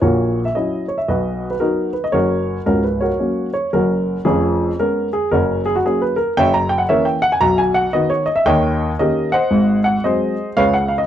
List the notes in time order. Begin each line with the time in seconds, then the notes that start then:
0.01 A#1 A#2 F#4 A#4 C#5
0.45 E5
0.55 F#3 C#4 E4 D#5
0.88 C#5
0.98 E5
1.08 B1 B2 F#4 B4 D#5
1.50 B4
1.60 F#3 B3 D#4 F#4 A#4
1.93 B4
2.04 D#5
2.12 F#1 F#2 F#4 A#4 C#5
2.66 C#1 C#2 C#4 F#4 A#4
2.84 B4
3.01 F#4 A#4 C#5
3.19 F#3 A#3 C#4
3.54 C#5
3.73 F#1 F#2 C#4 F#4 A#4
4.25 F1 F2 C#4 F4 G#4
4.79 G#3 B3 C#4 A#4
5.13 G#4
5.31 F#1 F#2 C#4 F#4 A#4
5.66 G#4
5.76 F#4
5.85 F#3 A#3 C#4 G#4
6.02 B4
6.16 A#4
6.37 F#1 F#2 C#5 E5 G5
6.54 A#5
6.69 G5
6.78 F#5
6.89 E3 A#3 C#4 A#4 C#5 E5
7.05 G5
7.22 F#5
7.32 G#5
7.40 B1 B2 A#5
7.58 G#5
7.74 F#5
7.93 D#3 B3 D#4 F#4 B4 D#5
8.10 C#5
8.26 D#5
8.36 E5
8.46 D#2 D#3 C#5 D#5 G5
8.99 D#3 A#3 C#4 G4 A#4 D#5
9.32 C5 D#5 F#5
9.51 G#1 G#2
9.84 F#5
10.04 F#3 G#3 C4 G#4 C5 D#5
10.57 C#2 C#3 B4 C#5 F5
10.73 F#5
10.88 F5
10.98 D#5